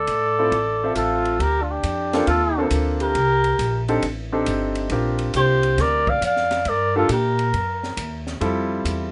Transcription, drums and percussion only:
0.07 hi-hat pedal soft
0.07 ride medium
0.52 kick soft
0.52 ride soft
0.95 hi-hat pedal soft
0.95 ride medium
1.25 ride soft
1.40 kick soft
1.40 ride medium
1.83 kick soft
1.83 hi-hat pedal soft
1.83 ride medium
2.13 snare soft
2.13 ride soft
2.27 kick soft
2.27 ride medium
2.71 kick soft
2.71 hi-hat pedal soft
2.71 ride medium
3.00 ride soft
3.15 kick soft
3.15 ride medium
3.44 ride soft
3.59 kick soft
3.59 hi-hat pedal medium
3.59 ride medium
3.88 ride soft
4.03 kick soft
4.03 ride medium
4.46 kick soft
4.46 hi-hat pedal soft
4.46 ride medium
4.75 ride soft
4.90 kick soft
4.90 ride medium
5.19 ride soft
5.34 kick soft
5.34 hi-hat pedal soft
5.34 ride medium
5.63 ride soft
5.78 kick soft
5.78 snare soft
5.78 ride medium
6.07 kick medium
6.22 kick soft
6.22 hi-hat pedal medium
6.22 ride medium
6.37 snare soft
6.51 snare soft
6.51 ride soft
6.65 kick soft
6.65 ride medium
7.09 kick soft
7.09 hi-hat pedal soft
7.09 ride medium
7.39 ride soft
7.54 kick soft
7.54 ride soft
7.83 snare soft
7.97 kick soft
7.97 hi-hat pedal soft
7.97 ride medium
8.27 snare soft
8.41 kick soft
8.41 ride medium
8.85 kick soft
8.85 hi-hat pedal medium
8.85 ride medium

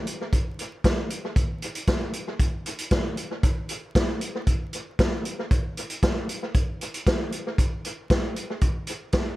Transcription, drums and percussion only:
0.07 closed hi-hat medium
0.33 kick medium
0.33 closed hi-hat medium
0.59 closed hi-hat medium
0.84 kick loud
0.84 snare loud
0.84 closed hi-hat medium
1.10 closed hi-hat medium
1.36 kick loud
1.36 closed hi-hat medium
1.62 closed hi-hat medium
1.75 closed hi-hat medium
1.87 kick loud
1.87 snare loud
1.87 closed hi-hat medium
2.13 closed hi-hat medium
2.40 kick medium
2.40 closed hi-hat medium
2.66 closed hi-hat medium
2.79 closed hi-hat medium
2.91 kick loud
2.91 snare loud
2.91 closed hi-hat medium
3.17 closed hi-hat medium
3.43 kick loud
3.43 closed hi-hat medium
3.69 closed hi-hat medium
3.95 kick loud
3.95 snare loud
3.95 closed hi-hat medium
4.21 closed hi-hat medium
4.47 kick medium
4.47 closed hi-hat medium
4.73 closed hi-hat medium
4.99 kick loud
4.99 snare loud
4.99 closed hi-hat soft
5.25 closed hi-hat medium
5.51 kick loud
5.51 closed hi-hat medium
5.77 closed hi-hat medium
5.90 closed hi-hat medium
6.03 kick loud
6.03 snare loud
6.03 closed hi-hat medium
6.29 closed hi-hat medium
6.54 kick loud
6.54 closed hi-hat medium
6.81 closed hi-hat medium
6.94 closed hi-hat medium
7.07 kick loud
7.07 snare loud
7.07 closed hi-hat medium
7.32 closed hi-hat medium
7.58 kick loud
7.58 closed hi-hat medium
7.85 closed hi-hat medium
8.10 kick loud
8.10 snare loud
8.10 closed hi-hat medium
8.36 closed hi-hat medium
8.61 kick loud
8.61 closed hi-hat medium
8.87 closed hi-hat medium
9.13 kick loud
9.13 snare medium
9.13 closed hi-hat medium

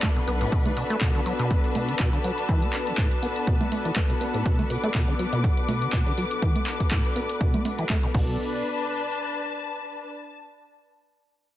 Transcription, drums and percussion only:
0.03 kick loud
0.03 clap loud
0.03 closed hi-hat medium
0.03 low conga medium
0.03 cabasa soft
0.16 closed hi-hat soft
0.16 cabasa soft
0.28 open hi-hat loud
0.28 cabasa medium
0.41 closed hi-hat medium
0.41 cabasa soft
0.52 kick loud
0.52 closed hi-hat medium
0.52 cabasa soft
0.66 closed hi-hat soft
0.66 low conga medium
0.77 open hi-hat loud
0.77 cabasa medium
0.90 closed hi-hat medium
0.90 cabasa soft
1.01 kick loud
1.01 clap loud
1.01 closed hi-hat medium
1.01 cabasa soft
1.15 closed hi-hat soft
1.26 open hi-hat medium
1.26 cabasa medium
1.39 closed hi-hat soft
1.39 cabasa soft
1.51 kick loud
1.51 closed hi-hat soft
1.51 cabasa soft
1.64 closed hi-hat soft
1.75 open hi-hat loud
1.75 low conga loud
1.75 cabasa medium
1.89 closed hi-hat soft
1.89 cabasa soft
1.99 kick loud
1.99 clap loud
1.99 closed hi-hat medium
1.99 cabasa soft
2.13 closed hi-hat soft
2.13 cabasa soft
2.24 open hi-hat medium
2.24 cabasa medium
2.38 closed hi-hat medium
2.38 cabasa soft
2.49 kick loud
2.49 closed hi-hat medium
2.49 cabasa soft
2.62 closed hi-hat soft
2.73 clap medium
2.73 open hi-hat loud
2.73 cabasa medium
2.87 closed hi-hat medium
2.87 cabasa soft
2.98 kick loud
2.98 clap loud
2.98 closed hi-hat medium
2.98 cabasa soft
3.12 closed hi-hat soft
3.23 open hi-hat medium
3.23 cabasa medium
3.36 closed hi-hat medium
3.36 cabasa soft
3.47 kick loud
3.47 closed hi-hat medium
3.47 cabasa soft
3.61 closed hi-hat soft
3.61 low conga loud
3.72 open hi-hat loud
3.72 low conga loud
3.72 cabasa medium
3.85 closed hi-hat soft
3.85 cabasa soft
3.96 kick loud
3.96 clap loud
3.96 closed hi-hat medium
3.96 low conga loud
3.96 cabasa soft
4.10 closed hi-hat soft
4.10 cabasa soft
4.21 open hi-hat medium
4.21 cabasa medium
4.34 closed hi-hat medium
4.34 cabasa soft
4.46 kick loud
4.46 closed hi-hat medium
4.46 cabasa soft
4.59 closed hi-hat soft
4.59 low conga medium
4.70 open hi-hat loud
4.70 cabasa medium
4.84 closed hi-hat medium
4.84 cabasa soft
4.94 kick loud
4.94 clap loud
4.94 closed hi-hat medium
4.94 cabasa soft
5.08 closed hi-hat soft
5.19 open hi-hat medium
5.19 cabasa medium
5.33 closed hi-hat medium
5.33 cabasa soft
5.44 kick loud
5.44 closed hi-hat medium
5.44 cabasa soft
5.57 closed hi-hat soft
5.69 open hi-hat loud
5.69 low conga medium
5.69 cabasa medium
5.82 closed hi-hat medium
5.82 cabasa soft
5.93 kick loud
5.93 clap loud
5.93 closed hi-hat medium
5.93 cabasa soft
6.07 closed hi-hat soft
6.07 cabasa soft
6.18 open hi-hat medium
6.18 cabasa medium
6.31 closed hi-hat medium
6.31 cabasa soft
6.42 kick loud
6.42 closed hi-hat medium
6.42 cabasa soft
6.56 closed hi-hat soft
6.56 low conga medium
6.56 cabasa soft
6.67 clap medium
6.67 open hi-hat loud
6.67 cabasa medium
6.80 kick medium
6.80 closed hi-hat medium
6.80 cabasa soft
6.91 kick loud
6.91 clap loud
6.91 closed hi-hat medium
6.91 cabasa soft
7.05 closed hi-hat soft
7.05 cabasa soft
7.16 open hi-hat medium
7.16 cabasa medium
7.29 closed hi-hat medium
7.29 cabasa soft
7.41 kick loud
7.41 closed hi-hat medium
7.41 cabasa soft
7.54 closed hi-hat soft
7.54 low conga medium
7.54 cabasa soft
7.65 open hi-hat loud
7.65 low conga medium
7.65 cabasa medium
7.79 closed hi-hat medium
7.79 cabasa soft
7.89 kick loud
7.89 clap loud
7.89 closed hi-hat medium
7.89 low conga medium
7.89 cabasa soft
8.03 closed hi-hat soft
8.03 cabasa soft
8.14 kick loud
8.14 crash medium

